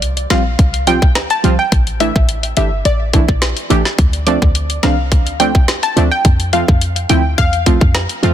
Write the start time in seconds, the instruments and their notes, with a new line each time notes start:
Already playing: 808-style bass C2
0.02 closed hi-hat
0.17 closed hi-hat
0.30 808-style bass A#1, synth stab F3 G3 C4 F4, synth pluck F5, cross-stick, snare, closed hi-hat
0.59 808-style bass C2, kick, closed hi-hat
0.74 closed hi-hat
0.87 synth stab F3 G3 C4 F4, synth pluck G5, closed hi-hat
1.02 808-style bass D2, kick
1.15 cross-stick, snare, closed hi-hat
1.30 synth pluck A5, closed hi-hat
1.43 808-style bass C2, synth stab F3 G3 C4 F4, closed hi-hat
1.59 synth pluck G5
1.72 808-style bass A1, kick, closed hi-hat
1.87 closed hi-hat
2.00 synth stab E3 A3 D4 E4, synth pluck E5, closed hi-hat
2.16 808-style bass A1, kick
2.29 closed hi-hat
2.43 closed hi-hat
2.57 808-style bass G1, synth stab E3 A3 D4 G4, synth pluck E5, closed hi-hat
2.85 808-style bass A1, synth pluck D5, closed hi-hat
3.13 synth stab E3 A3 D4 E4, kick, closed hi-hat
3.29 808-style bass A#1, kick
3.42 cross-stick, snare, closed hi-hat
3.57 closed hi-hat
3.70 808-style bass A1, synth stab E3 A3 D4 G4, closed hi-hat
3.85 snare
3.99 808-style bass D2, kick, closed hi-hat
4.13 closed hi-hat
4.26 synth stab F3 A3 C4 D4, synth pluck D5, closed hi-hat
4.42 808-style bass D2, kick
4.55 closed hi-hat
4.70 closed hi-hat
4.83 808-style bass C2, synth stab F3 A3 C4 D4, synth pluck F5, cross-stick, snare, closed hi-hat
5.12 808-style bass D2, kick, closed hi-hat
5.27 closed hi-hat
5.40 synth stab F3 A3 C4 D4, synth pluck G5, closed hi-hat
5.55 808-style bass E2, kick
5.68 cross-stick, snare, closed hi-hat
5.83 synth pluck A5, closed hi-hat
5.96 808-style bass D2, synth stab F3 A3 C4 D4, closed hi-hat
6.11 synth pluck G5
6.25 808-style bass F2, kick, closed hi-hat
6.40 closed hi-hat
6.53 synth stab F3 A3 C4 F4, synth pluck F5, closed hi-hat
6.68 808-style bass F2, kick
6.81 closed hi-hat
6.96 closed hi-hat
7.09 808-style bass D2, synth stab F3 A3 C4 E4, synth pluck G5, closed hi-hat
7.38 808-style bass E2, synth pluck F5, kick, closed hi-hat
7.53 closed hi-hat
7.66 synth stab F3 A3 C4 F4, kick, closed hi-hat
7.81 808-style bass F2, kick
7.95 cross-stick, snare, closed hi-hat
8.09 closed hi-hat
8.23 808-style bass E2, synth stab F3 A3 C4 F4, closed hi-hat